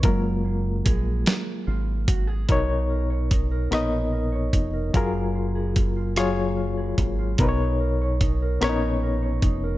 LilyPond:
<<
  \new Staff \with { instrumentName = "Clean electric guitar" } { \time 6/8 \key b \lydian \tempo 4. = 49 fis8 ais8 gis'8 ais8 eis'8 fis'16 gis'16 | <b cis''>16 dis'16 ais'16 cis''16 dis'16 ais'16 <b cis''>16 dis'16 ais'16 cis''16 dis'16 ais'16 | <fis gis'>16 ais16 eis'16 gis'16 ais16 eis'16 <fis gis'>16 ais16 eis'16 gis'16 ais16 eis'16 | <b cis''>16 dis'16 ais'16 cis''16 dis'16 ais'16 <b cis''>16 dis'16 ais'16 cis''16 dis'16 ais'16 | }
  \new Staff \with { instrumentName = "Reed electric piano" } { \time 6/8 \key b \lydian ais'2~ ais'8 r8 | <b, dis' ais' cis''>4 r8 <b dis' ais' dis''>4 r8 | <fis eis' gis' ais'>4 r8 <fis eis' gis' cis''>4 r8 | <b, dis' ais' b' cis''>4 r8 <b cis' dis' ais' cis''>4 r8 | }
  \new Staff \with { instrumentName = "Reed electric piano" } { \time 6/8 \key b \lydian <gis ais eis'>4. r4. | r2. | r2. | r2. | }
  \new Staff \with { instrumentName = "Fingered electric bass" } { \clef bass \time 6/8 \key b \lydian fis,,4 ais,,8 r8 gis,,4 | b,,4. ais,,4 eis,,8 | fis,,2~ fis,,8 gis,,8 | b,,4. ais,,4 eis,,8 | }
  \new DrumStaff \with { instrumentName = "Drums" } \drummode { \time 6/8 <hh bd>4 <hh bd>8 <hh sn>4 <hh bd>8 | <hh bd>4 <hh bd>8 <hh ss>4 <hh bd>8 | <hh bd>4 <hh bd>8 <hh ss>4 <hh bd>8 | <hh bd>4 <hh bd>8 <hh ss>4 <hh bd>8 | }
>>